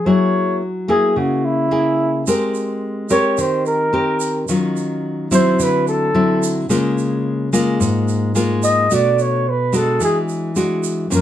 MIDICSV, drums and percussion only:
0, 0, Header, 1, 2, 480
1, 0, Start_track
1, 0, Tempo, 552486
1, 50, Time_signature, 4, 2, 24, 8
1, 9742, End_track
2, 0, Start_track
2, 0, Title_t, "Drums"
2, 1972, Note_on_c, 9, 82, 62
2, 2059, Note_off_c, 9, 82, 0
2, 2213, Note_on_c, 9, 82, 24
2, 2300, Note_off_c, 9, 82, 0
2, 2690, Note_on_c, 9, 82, 57
2, 2777, Note_off_c, 9, 82, 0
2, 2933, Note_on_c, 9, 82, 49
2, 3020, Note_off_c, 9, 82, 0
2, 3178, Note_on_c, 9, 82, 26
2, 3265, Note_off_c, 9, 82, 0
2, 3651, Note_on_c, 9, 82, 57
2, 3738, Note_off_c, 9, 82, 0
2, 3895, Note_on_c, 9, 82, 67
2, 3982, Note_off_c, 9, 82, 0
2, 4139, Note_on_c, 9, 82, 23
2, 4226, Note_off_c, 9, 82, 0
2, 4620, Note_on_c, 9, 82, 64
2, 4707, Note_off_c, 9, 82, 0
2, 4862, Note_on_c, 9, 82, 57
2, 4949, Note_off_c, 9, 82, 0
2, 5105, Note_on_c, 9, 82, 26
2, 5192, Note_off_c, 9, 82, 0
2, 5587, Note_on_c, 9, 82, 64
2, 5673, Note_off_c, 9, 82, 0
2, 5822, Note_on_c, 9, 82, 57
2, 5909, Note_off_c, 9, 82, 0
2, 6066, Note_on_c, 9, 82, 28
2, 6153, Note_off_c, 9, 82, 0
2, 6547, Note_on_c, 9, 82, 63
2, 6633, Note_off_c, 9, 82, 0
2, 6786, Note_on_c, 9, 82, 59
2, 6873, Note_off_c, 9, 82, 0
2, 7022, Note_on_c, 9, 82, 27
2, 7109, Note_off_c, 9, 82, 0
2, 7261, Note_on_c, 9, 82, 54
2, 7348, Note_off_c, 9, 82, 0
2, 7498, Note_on_c, 9, 82, 60
2, 7585, Note_off_c, 9, 82, 0
2, 7739, Note_on_c, 9, 82, 60
2, 7826, Note_off_c, 9, 82, 0
2, 7982, Note_on_c, 9, 82, 26
2, 8069, Note_off_c, 9, 82, 0
2, 8458, Note_on_c, 9, 82, 63
2, 8545, Note_off_c, 9, 82, 0
2, 8693, Note_on_c, 9, 82, 54
2, 8780, Note_off_c, 9, 82, 0
2, 8939, Note_on_c, 9, 82, 25
2, 9026, Note_off_c, 9, 82, 0
2, 9174, Note_on_c, 9, 82, 49
2, 9261, Note_off_c, 9, 82, 0
2, 9414, Note_on_c, 9, 82, 63
2, 9501, Note_off_c, 9, 82, 0
2, 9657, Note_on_c, 9, 82, 58
2, 9742, Note_off_c, 9, 82, 0
2, 9742, End_track
0, 0, End_of_file